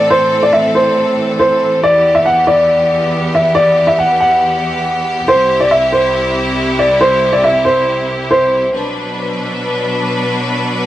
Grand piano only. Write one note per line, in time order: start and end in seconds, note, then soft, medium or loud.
0.10 0.41 C5 loud
0.43 0.51 D5 medium
0.53 0.69 E5 medium
0.75 1.36 C5 medium
1.39 1.80 C5 medium
1.83 2.13 D5 loud
2.15 2.23 E5 medium
2.25 2.42 F#5 medium
2.47 3.30 D5 medium
3.35 3.51 E5 medium
3.55 3.85 D5 loud
3.87 3.96 E5 medium
3.99 4.15 F#5 medium
4.20 5.24 F#5 medium
5.28 5.58 C5 loud
5.60 5.68 D5 medium
5.71 5.87 E5 medium
5.92 6.75 C5 medium
6.79 6.95 D5 medium
7.01 7.31 C5 loud
7.33 7.41 D5 medium
7.44 7.60 E5 medium
7.65 8.26 C5 medium
8.31 8.71 C5 medium